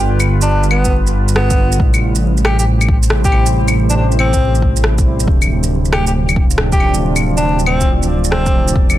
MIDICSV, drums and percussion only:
0, 0, Header, 1, 2, 480
1, 0, Start_track
1, 0, Tempo, 434783
1, 64, Time_signature, 4, 2, 24, 8
1, 9918, End_track
2, 0, Start_track
2, 0, Title_t, "Drums"
2, 221, Note_on_c, 9, 75, 55
2, 221, Note_on_c, 9, 82, 50
2, 331, Note_off_c, 9, 75, 0
2, 331, Note_off_c, 9, 82, 0
2, 460, Note_on_c, 9, 82, 61
2, 570, Note_off_c, 9, 82, 0
2, 700, Note_on_c, 9, 82, 35
2, 781, Note_on_c, 9, 75, 67
2, 810, Note_off_c, 9, 82, 0
2, 892, Note_off_c, 9, 75, 0
2, 937, Note_on_c, 9, 82, 59
2, 943, Note_on_c, 9, 36, 64
2, 1048, Note_off_c, 9, 82, 0
2, 1054, Note_off_c, 9, 36, 0
2, 1181, Note_on_c, 9, 82, 34
2, 1291, Note_off_c, 9, 82, 0
2, 1420, Note_on_c, 9, 82, 61
2, 1499, Note_on_c, 9, 37, 111
2, 1530, Note_off_c, 9, 82, 0
2, 1610, Note_off_c, 9, 37, 0
2, 1660, Note_on_c, 9, 82, 49
2, 1663, Note_on_c, 9, 36, 112
2, 1770, Note_off_c, 9, 82, 0
2, 1774, Note_off_c, 9, 36, 0
2, 1902, Note_on_c, 9, 82, 59
2, 1984, Note_on_c, 9, 36, 127
2, 2012, Note_off_c, 9, 82, 0
2, 2095, Note_off_c, 9, 36, 0
2, 2140, Note_on_c, 9, 75, 53
2, 2140, Note_on_c, 9, 82, 47
2, 2251, Note_off_c, 9, 75, 0
2, 2251, Note_off_c, 9, 82, 0
2, 2379, Note_on_c, 9, 82, 58
2, 2490, Note_off_c, 9, 82, 0
2, 2620, Note_on_c, 9, 82, 34
2, 2702, Note_on_c, 9, 37, 114
2, 2702, Note_on_c, 9, 75, 65
2, 2731, Note_off_c, 9, 82, 0
2, 2813, Note_off_c, 9, 37, 0
2, 2813, Note_off_c, 9, 75, 0
2, 2862, Note_on_c, 9, 82, 57
2, 2973, Note_off_c, 9, 82, 0
2, 3104, Note_on_c, 9, 75, 54
2, 3104, Note_on_c, 9, 82, 33
2, 3185, Note_on_c, 9, 36, 115
2, 3215, Note_off_c, 9, 75, 0
2, 3215, Note_off_c, 9, 82, 0
2, 3295, Note_off_c, 9, 36, 0
2, 3345, Note_on_c, 9, 82, 59
2, 3424, Note_on_c, 9, 37, 113
2, 3455, Note_off_c, 9, 82, 0
2, 3535, Note_off_c, 9, 37, 0
2, 3583, Note_on_c, 9, 36, 114
2, 3583, Note_on_c, 9, 82, 47
2, 3666, Note_on_c, 9, 75, 36
2, 3693, Note_off_c, 9, 82, 0
2, 3694, Note_off_c, 9, 36, 0
2, 3777, Note_off_c, 9, 75, 0
2, 3822, Note_on_c, 9, 82, 60
2, 3933, Note_off_c, 9, 82, 0
2, 4064, Note_on_c, 9, 75, 52
2, 4064, Note_on_c, 9, 82, 47
2, 4175, Note_off_c, 9, 75, 0
2, 4175, Note_off_c, 9, 82, 0
2, 4304, Note_on_c, 9, 82, 55
2, 4415, Note_off_c, 9, 82, 0
2, 4545, Note_on_c, 9, 82, 32
2, 4625, Note_on_c, 9, 75, 64
2, 4655, Note_off_c, 9, 82, 0
2, 4736, Note_off_c, 9, 75, 0
2, 4784, Note_on_c, 9, 36, 65
2, 4787, Note_on_c, 9, 82, 55
2, 4894, Note_off_c, 9, 36, 0
2, 4897, Note_off_c, 9, 82, 0
2, 5023, Note_on_c, 9, 82, 32
2, 5104, Note_on_c, 9, 36, 65
2, 5134, Note_off_c, 9, 82, 0
2, 5215, Note_off_c, 9, 36, 0
2, 5262, Note_on_c, 9, 82, 57
2, 5341, Note_on_c, 9, 37, 111
2, 5372, Note_off_c, 9, 82, 0
2, 5452, Note_off_c, 9, 37, 0
2, 5502, Note_on_c, 9, 82, 45
2, 5503, Note_on_c, 9, 36, 112
2, 5612, Note_off_c, 9, 82, 0
2, 5614, Note_off_c, 9, 36, 0
2, 5740, Note_on_c, 9, 82, 56
2, 5825, Note_on_c, 9, 36, 122
2, 5850, Note_off_c, 9, 82, 0
2, 5935, Note_off_c, 9, 36, 0
2, 5981, Note_on_c, 9, 75, 54
2, 5981, Note_on_c, 9, 82, 45
2, 6092, Note_off_c, 9, 75, 0
2, 6092, Note_off_c, 9, 82, 0
2, 6221, Note_on_c, 9, 82, 56
2, 6332, Note_off_c, 9, 82, 0
2, 6460, Note_on_c, 9, 82, 31
2, 6542, Note_on_c, 9, 37, 110
2, 6542, Note_on_c, 9, 75, 64
2, 6571, Note_off_c, 9, 82, 0
2, 6653, Note_off_c, 9, 37, 0
2, 6653, Note_off_c, 9, 75, 0
2, 6701, Note_on_c, 9, 82, 56
2, 6811, Note_off_c, 9, 82, 0
2, 6943, Note_on_c, 9, 75, 54
2, 6943, Note_on_c, 9, 82, 31
2, 7024, Note_on_c, 9, 36, 107
2, 7053, Note_off_c, 9, 75, 0
2, 7053, Note_off_c, 9, 82, 0
2, 7135, Note_off_c, 9, 36, 0
2, 7182, Note_on_c, 9, 82, 55
2, 7263, Note_on_c, 9, 37, 105
2, 7293, Note_off_c, 9, 82, 0
2, 7373, Note_off_c, 9, 37, 0
2, 7423, Note_on_c, 9, 36, 106
2, 7423, Note_on_c, 9, 82, 42
2, 7508, Note_on_c, 9, 75, 35
2, 7533, Note_off_c, 9, 36, 0
2, 7533, Note_off_c, 9, 82, 0
2, 7618, Note_off_c, 9, 75, 0
2, 7666, Note_on_c, 9, 82, 54
2, 7776, Note_off_c, 9, 82, 0
2, 7906, Note_on_c, 9, 75, 54
2, 7906, Note_on_c, 9, 82, 44
2, 8016, Note_off_c, 9, 75, 0
2, 8016, Note_off_c, 9, 82, 0
2, 8142, Note_on_c, 9, 82, 54
2, 8253, Note_off_c, 9, 82, 0
2, 8383, Note_on_c, 9, 82, 32
2, 8461, Note_on_c, 9, 75, 67
2, 8493, Note_off_c, 9, 82, 0
2, 8572, Note_off_c, 9, 75, 0
2, 8620, Note_on_c, 9, 82, 54
2, 8625, Note_on_c, 9, 36, 60
2, 8731, Note_off_c, 9, 82, 0
2, 8735, Note_off_c, 9, 36, 0
2, 8862, Note_on_c, 9, 82, 32
2, 8973, Note_off_c, 9, 82, 0
2, 9102, Note_on_c, 9, 82, 54
2, 9184, Note_on_c, 9, 37, 104
2, 9212, Note_off_c, 9, 82, 0
2, 9294, Note_off_c, 9, 37, 0
2, 9342, Note_on_c, 9, 82, 43
2, 9345, Note_on_c, 9, 36, 106
2, 9452, Note_off_c, 9, 82, 0
2, 9455, Note_off_c, 9, 36, 0
2, 9582, Note_on_c, 9, 82, 54
2, 9667, Note_on_c, 9, 36, 121
2, 9692, Note_off_c, 9, 82, 0
2, 9777, Note_off_c, 9, 36, 0
2, 9823, Note_on_c, 9, 75, 59
2, 9823, Note_on_c, 9, 82, 46
2, 9918, Note_off_c, 9, 75, 0
2, 9918, Note_off_c, 9, 82, 0
2, 9918, End_track
0, 0, End_of_file